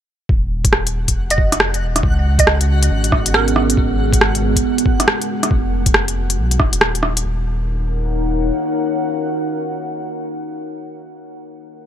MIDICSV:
0, 0, Header, 1, 6, 480
1, 0, Start_track
1, 0, Key_signature, -6, "minor"
1, 0, Tempo, 434783
1, 328, Time_signature, 4, 2, 24, 8
1, 13098, End_track
2, 0, Start_track
2, 0, Title_t, "Synth pluck"
2, 0, Program_c, 0, 84
2, 1446, Note_on_c, 0, 75, 87
2, 1691, Note_off_c, 0, 75, 0
2, 2645, Note_on_c, 0, 75, 88
2, 2891, Note_off_c, 0, 75, 0
2, 3693, Note_on_c, 0, 70, 90
2, 4230, Note_off_c, 0, 70, 0
2, 13098, End_track
3, 0, Start_track
3, 0, Title_t, "Synth texture"
3, 0, Program_c, 1, 99
3, 319, Note_on_c, 1, 78, 81
3, 320, Note_on_c, 1, 66, 83
3, 6095, Note_off_c, 1, 78, 0
3, 6096, Note_off_c, 1, 66, 0
3, 13098, End_track
4, 0, Start_track
4, 0, Title_t, "Ambient pad"
4, 0, Program_c, 2, 92
4, 2247, Note_on_c, 2, 61, 70
4, 2301, Note_on_c, 2, 68, 75
4, 2698, Note_on_c, 2, 59, 73
4, 2888, Note_on_c, 2, 75, 67
4, 3129, Note_on_c, 2, 78, 80
4, 4164, Note_on_c, 2, 56, 82
4, 4554, Note_on_c, 2, 70, 82
4, 4947, Note_off_c, 2, 61, 0
4, 4947, Note_off_c, 2, 75, 0
4, 6084, Note_off_c, 2, 70, 0
4, 6084, Note_off_c, 2, 78, 0
4, 6086, Note_off_c, 2, 56, 0
4, 6087, Note_off_c, 2, 68, 0
4, 6089, Note_off_c, 2, 59, 0
4, 8006, Note_on_c, 2, 63, 73
4, 8102, Note_on_c, 2, 70, 77
4, 8184, Note_on_c, 2, 73, 75
4, 8242, Note_on_c, 2, 77, 78
4, 8311, Note_on_c, 2, 78, 77
4, 11322, Note_off_c, 2, 63, 0
4, 11418, Note_off_c, 2, 70, 0
4, 11499, Note_off_c, 2, 73, 0
4, 11558, Note_off_c, 2, 77, 0
4, 11627, Note_off_c, 2, 78, 0
4, 13098, End_track
5, 0, Start_track
5, 0, Title_t, "Sub bass"
5, 0, Program_c, 3, 38
5, 322, Note_on_c, 3, 27, 97
5, 1283, Note_on_c, 3, 29, 85
5, 1300, Note_off_c, 3, 27, 0
5, 2000, Note_on_c, 3, 27, 100
5, 2017, Note_off_c, 3, 29, 0
5, 2230, Note_off_c, 3, 27, 0
5, 2243, Note_on_c, 3, 37, 101
5, 3194, Note_off_c, 3, 37, 0
5, 3207, Note_on_c, 3, 32, 86
5, 3433, Note_off_c, 3, 32, 0
5, 3446, Note_on_c, 3, 32, 81
5, 4155, Note_off_c, 3, 32, 0
5, 4165, Note_on_c, 3, 32, 100
5, 5115, Note_off_c, 3, 32, 0
5, 6080, Note_on_c, 3, 29, 98
5, 7041, Note_on_c, 3, 35, 89
5, 7058, Note_off_c, 3, 29, 0
5, 7279, Note_on_c, 3, 27, 83
5, 7296, Note_off_c, 3, 35, 0
5, 7992, Note_off_c, 3, 27, 0
5, 8004, Note_on_c, 3, 27, 98
5, 9402, Note_off_c, 3, 27, 0
5, 13098, End_track
6, 0, Start_track
6, 0, Title_t, "Drums"
6, 323, Note_on_c, 9, 36, 104
6, 433, Note_off_c, 9, 36, 0
6, 713, Note_on_c, 9, 36, 97
6, 715, Note_on_c, 9, 42, 51
6, 802, Note_on_c, 9, 37, 92
6, 823, Note_off_c, 9, 36, 0
6, 825, Note_off_c, 9, 42, 0
6, 912, Note_off_c, 9, 37, 0
6, 957, Note_on_c, 9, 42, 44
6, 1068, Note_off_c, 9, 42, 0
6, 1193, Note_on_c, 9, 36, 57
6, 1194, Note_on_c, 9, 42, 55
6, 1304, Note_off_c, 9, 36, 0
6, 1304, Note_off_c, 9, 42, 0
6, 1440, Note_on_c, 9, 42, 44
6, 1523, Note_on_c, 9, 36, 98
6, 1550, Note_off_c, 9, 42, 0
6, 1633, Note_off_c, 9, 36, 0
6, 1682, Note_on_c, 9, 37, 50
6, 1682, Note_on_c, 9, 42, 53
6, 1767, Note_off_c, 9, 37, 0
6, 1767, Note_on_c, 9, 37, 98
6, 1792, Note_off_c, 9, 42, 0
6, 1877, Note_off_c, 9, 37, 0
6, 1923, Note_on_c, 9, 42, 30
6, 2033, Note_off_c, 9, 42, 0
6, 2161, Note_on_c, 9, 37, 54
6, 2161, Note_on_c, 9, 42, 55
6, 2244, Note_on_c, 9, 36, 114
6, 2272, Note_off_c, 9, 37, 0
6, 2272, Note_off_c, 9, 42, 0
6, 2354, Note_off_c, 9, 36, 0
6, 2635, Note_on_c, 9, 36, 98
6, 2638, Note_on_c, 9, 42, 52
6, 2728, Note_on_c, 9, 37, 101
6, 2746, Note_off_c, 9, 36, 0
6, 2749, Note_off_c, 9, 42, 0
6, 2838, Note_off_c, 9, 37, 0
6, 2879, Note_on_c, 9, 42, 45
6, 2989, Note_off_c, 9, 42, 0
6, 3120, Note_on_c, 9, 42, 57
6, 3230, Note_off_c, 9, 42, 0
6, 3357, Note_on_c, 9, 42, 44
6, 3446, Note_on_c, 9, 36, 102
6, 3448, Note_on_c, 9, 37, 62
6, 3467, Note_off_c, 9, 42, 0
6, 3557, Note_off_c, 9, 36, 0
6, 3558, Note_off_c, 9, 37, 0
6, 3598, Note_on_c, 9, 42, 57
6, 3690, Note_on_c, 9, 37, 101
6, 3708, Note_off_c, 9, 42, 0
6, 3800, Note_off_c, 9, 37, 0
6, 3840, Note_on_c, 9, 42, 32
6, 3930, Note_on_c, 9, 37, 62
6, 3950, Note_off_c, 9, 42, 0
6, 4041, Note_off_c, 9, 37, 0
6, 4082, Note_on_c, 9, 42, 56
6, 4166, Note_on_c, 9, 36, 115
6, 4192, Note_off_c, 9, 42, 0
6, 4277, Note_off_c, 9, 36, 0
6, 4555, Note_on_c, 9, 36, 102
6, 4565, Note_on_c, 9, 42, 53
6, 4651, Note_on_c, 9, 37, 104
6, 4665, Note_off_c, 9, 36, 0
6, 4675, Note_off_c, 9, 42, 0
6, 4762, Note_off_c, 9, 37, 0
6, 4803, Note_on_c, 9, 42, 44
6, 4913, Note_off_c, 9, 42, 0
6, 5033, Note_on_c, 9, 36, 60
6, 5041, Note_on_c, 9, 42, 57
6, 5144, Note_off_c, 9, 36, 0
6, 5151, Note_off_c, 9, 42, 0
6, 5281, Note_on_c, 9, 42, 45
6, 5362, Note_on_c, 9, 36, 106
6, 5391, Note_off_c, 9, 42, 0
6, 5472, Note_off_c, 9, 36, 0
6, 5518, Note_on_c, 9, 37, 51
6, 5518, Note_on_c, 9, 42, 54
6, 5605, Note_off_c, 9, 37, 0
6, 5605, Note_on_c, 9, 37, 105
6, 5629, Note_off_c, 9, 42, 0
6, 5715, Note_off_c, 9, 37, 0
6, 5758, Note_on_c, 9, 42, 31
6, 5868, Note_off_c, 9, 42, 0
6, 5996, Note_on_c, 9, 37, 52
6, 5996, Note_on_c, 9, 42, 54
6, 6081, Note_on_c, 9, 36, 116
6, 6107, Note_off_c, 9, 37, 0
6, 6107, Note_off_c, 9, 42, 0
6, 6191, Note_off_c, 9, 36, 0
6, 6471, Note_on_c, 9, 36, 98
6, 6471, Note_on_c, 9, 42, 51
6, 6561, Note_on_c, 9, 37, 102
6, 6581, Note_off_c, 9, 36, 0
6, 6582, Note_off_c, 9, 42, 0
6, 6671, Note_off_c, 9, 37, 0
6, 6714, Note_on_c, 9, 42, 42
6, 6824, Note_off_c, 9, 42, 0
6, 6955, Note_on_c, 9, 42, 57
6, 7065, Note_off_c, 9, 42, 0
6, 7191, Note_on_c, 9, 42, 42
6, 7281, Note_on_c, 9, 36, 106
6, 7282, Note_on_c, 9, 37, 60
6, 7301, Note_off_c, 9, 42, 0
6, 7391, Note_off_c, 9, 36, 0
6, 7392, Note_off_c, 9, 37, 0
6, 7428, Note_on_c, 9, 42, 53
6, 7520, Note_on_c, 9, 37, 107
6, 7539, Note_off_c, 9, 42, 0
6, 7631, Note_off_c, 9, 37, 0
6, 7673, Note_on_c, 9, 42, 30
6, 7758, Note_on_c, 9, 37, 60
6, 7784, Note_off_c, 9, 42, 0
6, 7869, Note_off_c, 9, 37, 0
6, 7914, Note_on_c, 9, 42, 56
6, 8025, Note_off_c, 9, 42, 0
6, 13098, End_track
0, 0, End_of_file